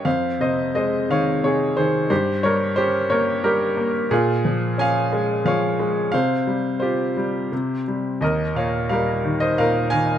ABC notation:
X:1
M:3/4
L:1/16
Q:1/4=89
K:Fm
V:1 name="Grand piano"
[cf]2 [ce]2 [ce]2 [df]2 [Ad]2 [Ac]2 | [Gc]2 [Bd]2 [Gc]2 [Bd]2 [GB]3 z | [FA]4 [fa]4 [df]4 | [cf]4 [Gc]6 z2 |
[Be]2 [df]2 [Bf]3 [ce] [Bf]2 [fa]2 |]
V:2 name="Grand piano" clef=bass
F,,2 C,2 A,2 E,2 C,2 E,2 | G,,2 G,2 D2 B,2 G,2 B,2 | B,,2 F,2 D2 A,2 F,2 A,2 | C,2 G,2 F2 G,2 C,2 G,2 |
E,,2 B,,2 G,2 E,2 B,,2 E,2 |]